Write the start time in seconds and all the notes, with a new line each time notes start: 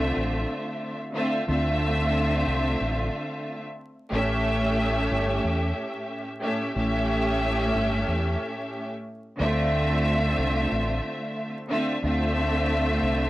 Already playing: C2 D3 A3 C4 F4 E5
0.17 A1
1.13 D3 A3 C4 F4 E5
1.47 D2 D3 A3 C4 F4 E5
2.47 C2
2.80 A1
4.10 A1 A2 A3 C#4 G4 E5
5.11 G1
5.44 E2
6.40 A2 A3 C#4 G4 E5
6.74 A1 A2 A3 C#4 G4 E5
7.75 G1
8.08 E2
9.38 D2 D3 A3 C4 F4 E5
10.38 C2
10.72 A1
11.68 D3 A3 C4 F4 E5
12.02 D2 D3 A3 C4 F4 E5
13.02 C2